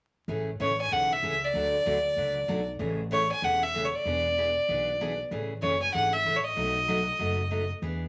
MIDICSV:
0, 0, Header, 1, 4, 480
1, 0, Start_track
1, 0, Key_signature, 3, "major"
1, 0, Tempo, 314465
1, 424, Time_signature, 4, 2, 24, 8
1, 12336, End_track
2, 0, Start_track
2, 0, Title_t, "Fiddle"
2, 0, Program_c, 0, 110
2, 931, Note_on_c, 0, 73, 84
2, 1200, Note_off_c, 0, 73, 0
2, 1238, Note_on_c, 0, 80, 96
2, 1410, Note_on_c, 0, 78, 99
2, 1433, Note_off_c, 0, 80, 0
2, 1713, Note_on_c, 0, 76, 91
2, 1736, Note_off_c, 0, 78, 0
2, 2197, Note_on_c, 0, 74, 90
2, 2220, Note_off_c, 0, 76, 0
2, 4102, Note_off_c, 0, 74, 0
2, 4767, Note_on_c, 0, 73, 91
2, 5038, Note_off_c, 0, 73, 0
2, 5060, Note_on_c, 0, 80, 99
2, 5252, Note_on_c, 0, 78, 98
2, 5275, Note_off_c, 0, 80, 0
2, 5538, Note_on_c, 0, 76, 103
2, 5561, Note_off_c, 0, 78, 0
2, 5874, Note_on_c, 0, 73, 60
2, 5897, Note_off_c, 0, 76, 0
2, 6023, Note_on_c, 0, 74, 89
2, 6046, Note_off_c, 0, 73, 0
2, 7935, Note_off_c, 0, 74, 0
2, 8578, Note_on_c, 0, 73, 81
2, 8863, Note_off_c, 0, 73, 0
2, 8883, Note_on_c, 0, 80, 88
2, 9050, Note_off_c, 0, 80, 0
2, 9062, Note_on_c, 0, 78, 91
2, 9354, Note_on_c, 0, 76, 101
2, 9377, Note_off_c, 0, 78, 0
2, 9707, Note_on_c, 0, 73, 64
2, 9730, Note_off_c, 0, 76, 0
2, 9826, Note_on_c, 0, 75, 94
2, 9849, Note_off_c, 0, 73, 0
2, 11757, Note_off_c, 0, 75, 0
2, 12336, End_track
3, 0, Start_track
3, 0, Title_t, "Steel-string acoustic guitar"
3, 0, Program_c, 1, 25
3, 431, Note_on_c, 1, 49, 51
3, 433, Note_on_c, 1, 52, 54
3, 441, Note_on_c, 1, 57, 61
3, 446, Note_on_c, 1, 68, 60
3, 448, Note_on_c, 1, 61, 61
3, 745, Note_off_c, 1, 49, 0
3, 746, Note_off_c, 1, 52, 0
3, 750, Note_off_c, 1, 57, 0
3, 753, Note_off_c, 1, 68, 0
3, 754, Note_off_c, 1, 61, 0
3, 912, Note_on_c, 1, 52, 74
3, 915, Note_on_c, 1, 49, 74
3, 922, Note_on_c, 1, 61, 79
3, 925, Note_on_c, 1, 57, 70
3, 927, Note_on_c, 1, 68, 73
3, 1082, Note_off_c, 1, 52, 0
3, 1083, Note_off_c, 1, 49, 0
3, 1087, Note_off_c, 1, 61, 0
3, 1088, Note_off_c, 1, 57, 0
3, 1089, Note_off_c, 1, 68, 0
3, 1386, Note_on_c, 1, 49, 54
3, 1393, Note_on_c, 1, 52, 51
3, 1395, Note_on_c, 1, 57, 58
3, 1404, Note_on_c, 1, 61, 59
3, 1406, Note_on_c, 1, 68, 63
3, 1703, Note_off_c, 1, 49, 0
3, 1706, Note_off_c, 1, 52, 0
3, 1707, Note_off_c, 1, 57, 0
3, 1712, Note_off_c, 1, 61, 0
3, 1713, Note_off_c, 1, 68, 0
3, 1871, Note_on_c, 1, 49, 64
3, 1873, Note_on_c, 1, 52, 58
3, 1882, Note_on_c, 1, 57, 72
3, 1882, Note_on_c, 1, 61, 72
3, 1886, Note_on_c, 1, 68, 73
3, 2041, Note_off_c, 1, 49, 0
3, 2042, Note_off_c, 1, 52, 0
3, 2046, Note_off_c, 1, 61, 0
3, 2047, Note_off_c, 1, 57, 0
3, 2049, Note_off_c, 1, 68, 0
3, 2355, Note_on_c, 1, 50, 51
3, 2363, Note_on_c, 1, 54, 58
3, 2365, Note_on_c, 1, 62, 56
3, 2370, Note_on_c, 1, 57, 66
3, 2375, Note_on_c, 1, 66, 65
3, 2667, Note_off_c, 1, 50, 0
3, 2671, Note_off_c, 1, 54, 0
3, 2672, Note_off_c, 1, 62, 0
3, 2675, Note_off_c, 1, 57, 0
3, 2677, Note_off_c, 1, 66, 0
3, 2833, Note_on_c, 1, 50, 73
3, 2837, Note_on_c, 1, 54, 78
3, 2841, Note_on_c, 1, 57, 84
3, 2850, Note_on_c, 1, 66, 86
3, 2851, Note_on_c, 1, 62, 85
3, 3002, Note_off_c, 1, 50, 0
3, 3004, Note_off_c, 1, 54, 0
3, 3006, Note_off_c, 1, 57, 0
3, 3011, Note_off_c, 1, 62, 0
3, 3011, Note_off_c, 1, 66, 0
3, 3315, Note_on_c, 1, 54, 53
3, 3317, Note_on_c, 1, 50, 54
3, 3319, Note_on_c, 1, 57, 53
3, 3328, Note_on_c, 1, 66, 59
3, 3330, Note_on_c, 1, 62, 53
3, 3628, Note_off_c, 1, 50, 0
3, 3628, Note_off_c, 1, 54, 0
3, 3629, Note_off_c, 1, 57, 0
3, 3634, Note_off_c, 1, 66, 0
3, 3635, Note_off_c, 1, 62, 0
3, 3783, Note_on_c, 1, 50, 65
3, 3790, Note_on_c, 1, 54, 69
3, 3792, Note_on_c, 1, 57, 73
3, 3800, Note_on_c, 1, 62, 79
3, 3800, Note_on_c, 1, 66, 72
3, 3958, Note_off_c, 1, 50, 0
3, 3961, Note_off_c, 1, 54, 0
3, 3962, Note_off_c, 1, 57, 0
3, 3966, Note_off_c, 1, 62, 0
3, 3966, Note_off_c, 1, 66, 0
3, 4260, Note_on_c, 1, 49, 53
3, 4269, Note_on_c, 1, 52, 58
3, 4272, Note_on_c, 1, 57, 56
3, 4273, Note_on_c, 1, 61, 53
3, 4281, Note_on_c, 1, 68, 65
3, 4580, Note_off_c, 1, 49, 0
3, 4584, Note_off_c, 1, 52, 0
3, 4586, Note_off_c, 1, 57, 0
3, 4587, Note_off_c, 1, 61, 0
3, 4591, Note_off_c, 1, 68, 0
3, 4743, Note_on_c, 1, 49, 77
3, 4746, Note_on_c, 1, 52, 76
3, 4757, Note_on_c, 1, 57, 72
3, 4758, Note_on_c, 1, 61, 81
3, 4767, Note_on_c, 1, 68, 74
3, 4918, Note_off_c, 1, 49, 0
3, 4919, Note_off_c, 1, 52, 0
3, 4924, Note_off_c, 1, 57, 0
3, 4925, Note_off_c, 1, 61, 0
3, 4930, Note_off_c, 1, 68, 0
3, 5237, Note_on_c, 1, 52, 53
3, 5238, Note_on_c, 1, 49, 53
3, 5242, Note_on_c, 1, 57, 62
3, 5242, Note_on_c, 1, 61, 52
3, 5245, Note_on_c, 1, 68, 56
3, 5548, Note_off_c, 1, 52, 0
3, 5549, Note_off_c, 1, 49, 0
3, 5551, Note_off_c, 1, 57, 0
3, 5551, Note_off_c, 1, 61, 0
3, 5553, Note_off_c, 1, 68, 0
3, 5717, Note_on_c, 1, 49, 70
3, 5724, Note_on_c, 1, 57, 67
3, 5729, Note_on_c, 1, 52, 74
3, 5735, Note_on_c, 1, 61, 69
3, 5735, Note_on_c, 1, 68, 64
3, 5884, Note_off_c, 1, 49, 0
3, 5888, Note_off_c, 1, 57, 0
3, 5891, Note_off_c, 1, 52, 0
3, 5893, Note_off_c, 1, 68, 0
3, 5894, Note_off_c, 1, 61, 0
3, 6190, Note_on_c, 1, 52, 56
3, 6203, Note_on_c, 1, 59, 49
3, 6209, Note_on_c, 1, 68, 68
3, 6210, Note_on_c, 1, 62, 61
3, 6505, Note_off_c, 1, 52, 0
3, 6511, Note_off_c, 1, 59, 0
3, 6514, Note_off_c, 1, 68, 0
3, 6515, Note_off_c, 1, 62, 0
3, 6680, Note_on_c, 1, 52, 69
3, 6685, Note_on_c, 1, 59, 79
3, 6691, Note_on_c, 1, 62, 73
3, 6696, Note_on_c, 1, 68, 84
3, 6846, Note_off_c, 1, 52, 0
3, 6849, Note_off_c, 1, 59, 0
3, 6852, Note_off_c, 1, 62, 0
3, 6854, Note_off_c, 1, 68, 0
3, 7148, Note_on_c, 1, 52, 52
3, 7159, Note_on_c, 1, 59, 61
3, 7160, Note_on_c, 1, 62, 59
3, 7163, Note_on_c, 1, 68, 56
3, 7464, Note_off_c, 1, 52, 0
3, 7469, Note_off_c, 1, 59, 0
3, 7470, Note_off_c, 1, 62, 0
3, 7472, Note_off_c, 1, 68, 0
3, 7641, Note_on_c, 1, 52, 65
3, 7649, Note_on_c, 1, 62, 78
3, 7650, Note_on_c, 1, 59, 70
3, 7655, Note_on_c, 1, 68, 68
3, 7807, Note_off_c, 1, 52, 0
3, 7811, Note_off_c, 1, 59, 0
3, 7811, Note_off_c, 1, 62, 0
3, 7813, Note_off_c, 1, 68, 0
3, 8113, Note_on_c, 1, 49, 49
3, 8117, Note_on_c, 1, 57, 57
3, 8118, Note_on_c, 1, 52, 56
3, 8123, Note_on_c, 1, 61, 57
3, 8129, Note_on_c, 1, 68, 60
3, 8426, Note_off_c, 1, 49, 0
3, 8428, Note_off_c, 1, 57, 0
3, 8429, Note_off_c, 1, 52, 0
3, 8432, Note_off_c, 1, 61, 0
3, 8435, Note_off_c, 1, 68, 0
3, 8577, Note_on_c, 1, 52, 69
3, 8579, Note_on_c, 1, 49, 75
3, 8585, Note_on_c, 1, 57, 72
3, 8593, Note_on_c, 1, 61, 83
3, 8593, Note_on_c, 1, 68, 82
3, 8755, Note_off_c, 1, 49, 0
3, 8755, Note_off_c, 1, 52, 0
3, 8759, Note_off_c, 1, 57, 0
3, 8762, Note_off_c, 1, 61, 0
3, 8762, Note_off_c, 1, 68, 0
3, 9064, Note_on_c, 1, 49, 54
3, 9072, Note_on_c, 1, 52, 53
3, 9072, Note_on_c, 1, 57, 55
3, 9080, Note_on_c, 1, 61, 52
3, 9083, Note_on_c, 1, 68, 61
3, 9382, Note_off_c, 1, 49, 0
3, 9386, Note_off_c, 1, 52, 0
3, 9386, Note_off_c, 1, 57, 0
3, 9390, Note_off_c, 1, 61, 0
3, 9392, Note_off_c, 1, 68, 0
3, 9552, Note_on_c, 1, 49, 62
3, 9556, Note_on_c, 1, 57, 67
3, 9557, Note_on_c, 1, 52, 69
3, 9562, Note_on_c, 1, 61, 75
3, 9567, Note_on_c, 1, 68, 71
3, 9722, Note_off_c, 1, 49, 0
3, 9724, Note_off_c, 1, 57, 0
3, 9725, Note_off_c, 1, 52, 0
3, 9727, Note_off_c, 1, 61, 0
3, 9730, Note_off_c, 1, 68, 0
3, 10013, Note_on_c, 1, 47, 59
3, 10022, Note_on_c, 1, 57, 56
3, 10024, Note_on_c, 1, 54, 56
3, 10027, Note_on_c, 1, 63, 56
3, 10037, Note_on_c, 1, 66, 57
3, 10337, Note_off_c, 1, 47, 0
3, 10341, Note_off_c, 1, 57, 0
3, 10342, Note_off_c, 1, 54, 0
3, 10344, Note_off_c, 1, 63, 0
3, 10348, Note_off_c, 1, 66, 0
3, 10501, Note_on_c, 1, 47, 73
3, 10506, Note_on_c, 1, 54, 73
3, 10508, Note_on_c, 1, 57, 73
3, 10515, Note_on_c, 1, 63, 77
3, 10517, Note_on_c, 1, 66, 81
3, 10676, Note_off_c, 1, 47, 0
3, 10679, Note_off_c, 1, 54, 0
3, 10680, Note_off_c, 1, 57, 0
3, 10683, Note_off_c, 1, 63, 0
3, 10685, Note_off_c, 1, 66, 0
3, 10972, Note_on_c, 1, 47, 58
3, 10979, Note_on_c, 1, 54, 51
3, 10985, Note_on_c, 1, 57, 57
3, 10989, Note_on_c, 1, 63, 61
3, 10991, Note_on_c, 1, 66, 64
3, 11296, Note_off_c, 1, 47, 0
3, 11300, Note_off_c, 1, 54, 0
3, 11303, Note_off_c, 1, 57, 0
3, 11305, Note_off_c, 1, 63, 0
3, 11306, Note_off_c, 1, 66, 0
3, 11459, Note_on_c, 1, 47, 62
3, 11465, Note_on_c, 1, 54, 72
3, 11470, Note_on_c, 1, 57, 61
3, 11477, Note_on_c, 1, 63, 67
3, 11477, Note_on_c, 1, 66, 66
3, 11635, Note_off_c, 1, 47, 0
3, 11638, Note_off_c, 1, 54, 0
3, 11641, Note_off_c, 1, 57, 0
3, 11644, Note_off_c, 1, 63, 0
3, 11645, Note_off_c, 1, 66, 0
3, 11944, Note_on_c, 1, 52, 58
3, 11944, Note_on_c, 1, 59, 57
3, 11947, Note_on_c, 1, 62, 55
3, 11961, Note_on_c, 1, 68, 66
3, 12262, Note_off_c, 1, 52, 0
3, 12262, Note_off_c, 1, 59, 0
3, 12264, Note_off_c, 1, 62, 0
3, 12271, Note_off_c, 1, 68, 0
3, 12336, End_track
4, 0, Start_track
4, 0, Title_t, "Upright bass"
4, 0, Program_c, 2, 32
4, 427, Note_on_c, 2, 33, 85
4, 810, Note_off_c, 2, 33, 0
4, 919, Note_on_c, 2, 33, 86
4, 1320, Note_off_c, 2, 33, 0
4, 1399, Note_on_c, 2, 35, 83
4, 1801, Note_off_c, 2, 35, 0
4, 1870, Note_on_c, 2, 37, 80
4, 2276, Note_off_c, 2, 37, 0
4, 2346, Note_on_c, 2, 38, 85
4, 2729, Note_off_c, 2, 38, 0
4, 2833, Note_on_c, 2, 38, 80
4, 3237, Note_off_c, 2, 38, 0
4, 3304, Note_on_c, 2, 37, 74
4, 3712, Note_off_c, 2, 37, 0
4, 3788, Note_on_c, 2, 35, 77
4, 4194, Note_off_c, 2, 35, 0
4, 4260, Note_on_c, 2, 33, 91
4, 5030, Note_off_c, 2, 33, 0
4, 5224, Note_on_c, 2, 28, 78
4, 5992, Note_off_c, 2, 28, 0
4, 6187, Note_on_c, 2, 28, 97
4, 6954, Note_off_c, 2, 28, 0
4, 7151, Note_on_c, 2, 35, 80
4, 7917, Note_off_c, 2, 35, 0
4, 8107, Note_on_c, 2, 33, 88
4, 8490, Note_off_c, 2, 33, 0
4, 8589, Note_on_c, 2, 30, 80
4, 8995, Note_off_c, 2, 30, 0
4, 9075, Note_on_c, 2, 32, 83
4, 9479, Note_off_c, 2, 32, 0
4, 9540, Note_on_c, 2, 33, 79
4, 9950, Note_off_c, 2, 33, 0
4, 10024, Note_on_c, 2, 35, 94
4, 10792, Note_off_c, 2, 35, 0
4, 10983, Note_on_c, 2, 30, 77
4, 11752, Note_off_c, 2, 30, 0
4, 11937, Note_on_c, 2, 40, 86
4, 12336, Note_off_c, 2, 40, 0
4, 12336, End_track
0, 0, End_of_file